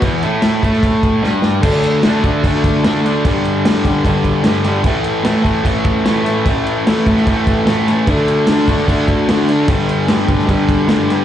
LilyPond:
<<
  \new Staff \with { instrumentName = "Distorted electric guitar" } { \clef bass \time 4/4 \key d \major \tempo 4 = 149 <e, e>8 <a, a>4 <a, a>4. <g, g>4 | <d a d'>4 <d a d'>8 <a d'>8 <d a d'>4 <d a d'>8 <a d'>8 | <g, d g>4 <g, d g>8 <d g>8 <g, d g>4 <g, d g>8 <d g>8 | <a, e a>4 <a, e a>8 <e a>8 <a, e a>4 <a, e a>8 <e a>8 |
<a, e a>4 <a, e a>8 <e a>8 <a, e a>4 <a, e a>8 <e a>8 | <d a d'>4 <d a d'>8 <a d'>8 <d a d'>4 <d a d'>8 <a d'>8 | <g, d g>4 <g, d g>8 <d g>8 <g, d g>4 <g, d g>8 <d g>8 | }
  \new DrumStaff \with { instrumentName = "Drums" } \drummode { \time 4/4 <cymc bd>8 cymc8 <cymc sn>8 <cymc bd>16 sn16 <cymc bd>8 <cymc bd>8 sn8 sn8 | <cymc bd>8 cymc8 <cymc sn>8 <cymc bd>8 <cymc bd>8 <cymc bd>8 <cymc sn>8 cymc8 | <cymc bd>8 cymc8 <cymc sn>8 <cymc bd>8 <cymc bd>8 <cymc bd>8 <cymc sn>8 <cymc sn>8 | <cymc bd>8 cymc8 <cymc sn>8 <cymc bd>8 <cymc bd>8 <cymc bd>8 <cymc sn>8 <cymc sn>8 |
<cymc bd>8 cymc8 <cymc sn>8 <cymc bd>16 sn16 <cymc bd>8 <cymc bd>8 <cymc sn>8 <cymc sn>8 | <cymc bd>8 cymc8 <cymc sn>8 <cymc bd>16 sn16 <cymc bd>8 <cymc bd>8 <cymc sn>8 cymc8 | <cymc bd>8 cymc8 <cymc sn>8 <cymc bd>16 sn16 <cymc bd>8 <cymc bd>8 <cymc sn>8 <cymc sn>8 | }
>>